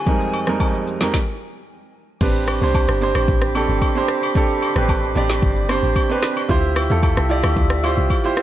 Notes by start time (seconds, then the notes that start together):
Already playing: G#5
0.06 F2 G3 G#3 C4 D#4 A#4, kick, shaker
0.20 shaker
0.34 high agogo, shaker
0.47 F2 G3 G#3 C4 D#4 A#4, cross-stick, shaker
0.60 kick, high agogo, low woodblock, shaker
0.74 shaker
0.87 shaker
1.01 F2 G#3 C4 D#4 G4 A#4, snare, high agogo
1.14 kick, snare
2.21 A1 C4 D4 G4 B4 G5 B5 D6, kick, crash, shaker
2.35 shaker
2.48 cross-stick, open hi-hat, high agogo, shaker
2.61 C2 C4 D4 G4 C5, shaker
2.74 kick, high agogo, low woodblock, shaker
2.88 G1, cross-stick, shaker
3.01 C4 D4 G4 C5, open hi-hat, shaker
3.15 A1, cross-stick, high agogo
3.28 A1, kick, shaker
3.42 cross-stick, shaker
3.55 C4 D4 G4 A4, open hi-hat, high agogo, shaker
3.69 G1, shaker
3.81 kick, high agogo, shaker
3.95 C4 D4 G4 C5, shaker
4.08 cross-stick, open hi-hat, shaker
4.23 high agogo, shaker
4.35 C4 D4 G4 A4, kick, shaker
4.49 shaker
4.62 open hi-hat, high agogo, shaker
4.76 A1 C4 D4 G4 B4, cross-stick, shaker
4.89 kick, high agogo, low woodblock, shaker
5.03 shaker
5.15 A1 C4 D4 G4 D5, open hi-hat, shaker
5.29 snare, high agogo
5.42 G1, kick, shaker
5.56 shaker
5.69 C4 D4 G4 C5, cross-stick, open hi-hat, high agogo, shaker
5.83 A1, shaker
5.96 kick, high agogo, shaker
6.10 C4 D4 G4 B4, shaker
6.23 cross-stick, snare, open hi-hat, shaker
6.37 high agogo, shaker
6.49 D2 E4 F4 G4 C5 E5 G5 E6, kick, shaker
6.63 shaker
6.76 cross-stick, open hi-hat, high agogo, shaker
6.90 E2 E4 F4 G4 A4, shaker
7.03 kick, high agogo, low woodblock, shaker
7.17 C2, cross-stick, shaker
7.29 E4 F4 G4 D5, open hi-hat, shaker
7.43 D2, cross-stick, high agogo
7.57 D2, kick, shaker
7.70 cross-stick, shaker
7.83 E4 F4 G4 C5, open hi-hat, high agogo, shaker
7.97 C2, shaker
8.10 kick, high agogo, shaker
8.24 E4 F4 G4 C5, shaker
8.37 cross-stick, open hi-hat, shaker